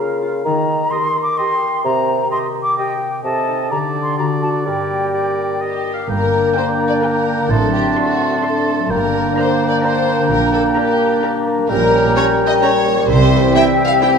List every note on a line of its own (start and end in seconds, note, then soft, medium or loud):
0.00 0.43 C#3 medium
0.00 0.48 C#3 medium
0.00 3.20 A#3 soft
0.00 0.21 F4 soft
0.00 0.42 F4 medium
0.00 0.91 A#4 soft
0.00 0.42 F5 medium
0.00 0.47 F5 soft
0.22 0.47 F4 medium
0.45 0.84 D#3 medium
0.45 1.87 D#3 medium
0.45 0.92 A#5 medium
0.69 3.47 D#4 soft
0.91 1.09 G4 soft
0.91 1.60 A#4 medium
0.91 1.08 D#5 medium
0.91 1.22 C6 medium
1.16 2.77 D#5 soft
1.22 1.39 D6 medium
1.37 1.55 G4 medium
1.37 1.54 D#5 medium
1.37 3.26 G5 soft
1.37 1.84 C6 medium
1.62 3.26 A#4 medium
1.84 2.23 C3 medium
1.84 3.23 C3 medium
1.84 2.30 A#5 medium
2.09 3.73 C4 soft
2.32 3.00 G4 medium
2.32 2.48 G4 medium
2.32 2.48 D#5 medium
2.32 2.39 C6 medium
2.55 3.73 C5 soft
2.63 2.78 D6 medium
2.78 2.95 G4 medium
2.78 3.73 D#5 soft
2.78 2.94 D#5 medium
2.78 3.24 G5 medium
3.01 3.26 G4 soft
3.24 3.72 C3 medium
3.24 3.73 C3 medium
3.24 3.73 A4 medium
3.24 3.72 D#5 medium
3.24 3.70 A5 medium
3.48 3.73 D#4 soft
3.48 3.73 A4 soft
3.70 4.68 D3 medium
3.70 4.18 D3 medium
3.70 4.20 G4 medium
3.70 4.17 D5 medium
3.70 3.78 A#5 medium
3.95 4.42 D4 soft
3.95 4.21 G4 soft
4.03 4.18 C6 medium
4.18 4.68 D3 soft
4.18 4.67 F#4 medium
4.18 4.65 D5 medium
4.18 4.26 A#5 medium
4.42 6.32 D4 soft
4.42 4.69 F#4 soft
4.42 4.48 A5 medium
4.66 6.09 G2 soft
4.66 5.85 G3 medium
4.66 5.85 A#4 medium
4.66 5.08 D5 soft
4.66 5.83 G5 medium
4.91 7.25 A#3 soft
5.14 5.85 G4 soft
5.14 5.63 D5 medium
5.38 6.43 A#4 soft
5.61 6.06 G4 medium
5.61 6.67 D5 soft
5.61 5.93 D#5 medium
5.86 7.52 G4 soft
5.94 6.09 F5 soft
6.08 6.46 G1 medium
6.08 6.47 G2 medium
6.08 7.52 G2 medium
6.08 7.46 A#3 medium
6.08 8.86 D4 medium
6.08 6.55 A#4 medium
6.08 7.52 G5 medium
6.08 7.46 A#5 medium
6.21 7.38 D3 soft
6.33 6.55 D4 soft
6.45 7.02 A#4 soft
6.56 6.91 D4 medium
6.56 7.14 D4 soft
6.56 6.91 A#4 medium
6.56 6.65 C5 medium
6.56 6.91 G5 medium
6.68 6.91 D5 soft
6.80 7.52 A#5 soft
6.88 6.94 D5 medium
6.88 8.08 D5 soft
7.02 7.38 D4 medium
7.02 7.38 A#4 medium
7.02 7.49 A#4 medium
7.02 7.52 A#4 soft
7.02 7.38 G5 medium
7.15 7.72 D4 soft
7.27 7.52 A#3 soft
7.39 7.52 D3 soft
7.49 7.87 A1 medium
7.49 8.93 A2 medium
7.49 7.87 A2 medium
7.49 8.88 A3 medium
7.49 8.91 C4 medium
7.49 7.73 A4 medium
7.49 8.92 A5 medium
7.49 8.92 C6 medium
7.62 8.78 F#3 soft
7.74 8.55 D4 soft
7.74 7.89 G4 medium
7.90 7.97 G4 soft
7.97 8.31 D4 medium
7.97 8.43 F#4 medium
7.97 8.31 A4 medium
7.97 8.43 A4 soft
7.97 8.32 C6 medium
8.09 8.31 D5 soft
8.21 8.92 C6 soft
8.33 9.48 D5 soft
8.43 8.78 D4 medium
8.43 8.78 A4 medium
8.43 8.90 A4 medium
8.43 8.93 A4 soft
8.43 8.78 C6 medium
8.56 9.13 D4 soft
8.67 8.92 A3 soft
8.79 8.92 F#3 soft
8.89 9.27 G1 medium
8.89 10.31 G2 medium
8.89 9.28 G2 medium
8.89 11.66 A#3 medium
8.89 11.71 A#3 medium
8.89 11.70 D4 medium
8.89 11.65 D4 medium
8.89 9.36 A#4 medium
8.89 11.53 G5 medium
8.89 11.69 A#5 medium
9.02 10.17 D3 soft
9.14 9.36 D4 soft
9.25 9.83 A#4 medium
9.36 9.71 D4 medium
9.36 9.95 D4 soft
9.36 9.72 A#4 medium
9.36 9.68 C5 medium
9.36 9.72 A#5 medium
9.49 9.71 D5 soft
9.60 10.99 A#5 medium
9.69 9.75 D5 medium
9.69 10.87 D5 medium
9.83 10.18 D4 medium
9.83 10.18 A#4 medium
9.83 10.64 A#4 soft
9.83 10.29 C5 medium
9.83 10.17 A#5 medium
9.96 10.52 D4 medium
10.07 11.46 A#3 soft
10.19 10.32 D3 soft
10.29 10.67 A#1 medium
10.29 10.67 A#2 medium
10.29 11.69 A#2 medium
10.29 10.52 A#4 medium
10.42 11.57 G3 soft
10.53 10.75 D4 soft
10.53 10.61 A4 medium
10.65 11.23 A#4 medium
10.76 11.11 D4 medium
10.76 11.34 D4 medium
10.76 11.22 G4 medium
10.76 11.11 A#4 medium
10.76 11.11 A#5 medium
10.88 11.11 D5 soft
11.00 13.10 A#5 medium
11.12 11.72 D5 medium
11.23 11.58 D4 medium
11.23 11.58 A#4 medium
11.23 12.15 A#4 medium
11.23 11.58 A#5 medium
11.36 11.72 D4 medium
11.47 12.84 A#3 medium
11.58 11.80 G3 soft
11.69 12.08 A#1 medium
11.69 12.08 A#2 medium
11.69 13.10 A#2 medium
11.69 13.05 G3 medium
11.69 14.18 G3 medium
11.69 12.80 C#4 medium
11.69 13.08 C#4 medium
11.69 12.12 A#4 loud
11.69 12.79 G5 medium
11.69 12.78 A#5 medium
11.81 12.96 G3 soft
11.92 12.72 C#4 medium
12.05 13.42 G4 medium
12.15 12.23 C#4 medium
12.15 12.23 G4 medium
12.15 12.61 A#4 medium
12.15 12.24 C#5 medium
12.15 12.25 A#5 medium
12.27 12.49 C#5 medium
12.39 13.77 G5 medium
12.47 13.10 C#5 medium
12.47 12.53 D#5 loud
12.61 12.70 C#4 medium
12.61 12.70 G4 medium
12.61 13.10 A#4 medium
12.61 13.07 C#5 loud
12.61 12.71 A#5 medium
12.74 13.10 C#4 medium
12.85 13.10 A#3 medium
12.97 13.18 G3 medium
13.08 13.47 C2 medium
13.08 14.18 C3 medium
13.08 13.47 C3 medium
13.08 14.18 E3 medium
13.08 14.18 C4 medium
13.08 13.54 C5 loud
13.08 14.18 E5 medium
13.08 14.18 G5 medium
13.20 14.18 G3 medium
13.31 14.12 E4 medium
13.43 14.18 G4 medium
13.54 13.62 C4 medium
13.54 13.63 E4 medium
13.54 14.01 C5 medium
13.54 13.63 E5 loud
13.54 13.64 G5 medium
13.67 13.89 E5 medium
13.78 14.18 G5 medium
13.86 13.92 F5 loud
13.90 14.18 E5 medium
14.01 14.09 C4 medium
14.01 14.10 E4 medium
14.01 14.18 G4 medium
14.01 14.18 C5 medium
14.01 14.10 G5 medium
14.13 14.18 E4 medium